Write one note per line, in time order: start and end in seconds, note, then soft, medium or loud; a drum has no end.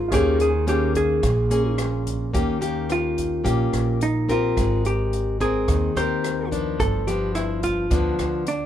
0.00 0.08 F4 soft
0.00 0.13 F4 medium
0.00 0.10 G#4 soft
0.00 0.11 A#4 soft
0.00 0.12 C5 medium
0.08 1.19 D#2 medium
0.08 1.20 D#3 medium
0.08 0.47 A#3 medium
0.08 2.28 F4 soft
0.08 2.29 G#4 soft
0.08 2.30 A#4 soft
0.08 kick medium
0.08 cross-stick medium
0.08 closed hi-hat medium
0.12 0.48 C#4 medium
0.12 0.41 G4 medium
0.12 0.48 G#4 medium
0.12 2.31 C#5 medium
0.40 0.68 G#4 medium
0.40 closed hi-hat soft
0.67 1.22 A#3 medium
0.67 1.23 C#4 medium
0.67 0.96 G4 medium
0.67 1.23 G#4 medium
0.67 closed hi-hat soft
0.95 1.75 G#4 medium
0.95 kick soft
0.95 closed hi-hat soft
1.23 2.30 A#1 loud
1.23 2.31 A#2 medium
1.23 kick medium
1.23 cross-stick medium
1.23 closed hi-hat medium
1.51 2.29 A#3 medium
1.51 2.30 C#4 medium
1.51 2.30 G#4 medium
1.51 closed hi-hat soft
1.78 cross-stick medium
1.78 closed hi-hat soft
2.07 kick soft
2.07 closed hi-hat soft
2.33 3.41 D#2 medium
2.33 3.42 D#3 soft
2.33 2.57 A#3 soft
2.33 2.57 C#4 medium
2.33 2.57 G4 medium
2.33 kick medium
2.33 closed hi-hat soft
2.61 3.40 A#3 soft
2.61 3.40 C#4 soft
2.61 3.41 G4 soft
2.61 closed hi-hat soft
2.89 3.98 F4 medium
2.89 cross-stick soft
2.89 closed hi-hat soft
3.18 kick soft
3.18 closed hi-hat soft
3.44 3.71 A#1 medium
3.44 4.53 A#2 soft
3.44 4.00 A#3 medium
3.44 4.00 C#4 soft
3.44 4.00 G4 medium
3.44 kick soft
3.44 closed hi-hat medium
3.73 4.52 A#1 medium
3.73 cross-stick medium
3.73 closed hi-hat soft
4.01 4.30 D#4 medium
4.01 closed hi-hat soft
4.29 5.35 C4 medium
4.29 4.86 F4 medium
4.29 5.36 G4 medium
4.29 5.36 A#4 medium
4.29 kick soft
4.29 closed hi-hat soft
4.57 5.64 G#1 medium
4.57 5.65 G#3 medium
4.57 kick medium
4.57 cross-stick medium
4.57 closed hi-hat soft
4.85 5.41 G4 medium
4.85 closed hi-hat soft
5.13 closed hi-hat soft
5.40 5.91 C4 medium
5.40 5.98 G#4 medium
5.40 5.92 A#4 medium
5.40 kick soft
5.40 closed hi-hat soft
5.68 5.94 D#2 medium
5.68 6.77 D#3 medium
5.68 kick soft
5.68 cross-stick medium
5.68 closed hi-hat soft
5.95 6.75 D#2 medium
5.95 6.47 C4 medium
5.95 6.47 G4 medium
5.95 6.48 A#4 medium
5.95 6.48 C5 medium
5.95 closed hi-hat soft
6.24 cross-stick medium
6.24 closed hi-hat soft
6.52 7.03 F3 soft
6.52 7.03 B3 medium
6.52 7.03 D4 medium
6.52 kick soft
6.52 closed hi-hat soft
6.79 7.87 G1 medium
6.79 7.88 G2 medium
6.79 7.08 A4 medium
6.79 kick medium
6.79 closed hi-hat soft
7.07 7.86 F3 soft
7.07 7.86 B3 soft
7.07 7.87 D4 medium
7.07 7.35 G4 medium
7.07 closed hi-hat soft
7.35 7.63 E4 medium
7.35 cross-stick medium
7.35 closed hi-hat soft
7.63 8.48 F4 medium
7.63 kick soft
7.63 closed hi-hat soft
7.91 8.16 D2 medium
7.91 8.66 D3 medium
7.91 8.46 F3 medium
7.91 8.46 B3 medium
7.91 8.46 D4 medium
7.91 kick medium
7.91 closed hi-hat medium
8.19 8.66 D2 medium
8.19 cross-stick medium
8.19 closed hi-hat soft
8.46 8.66 D4 medium
8.46 closed hi-hat soft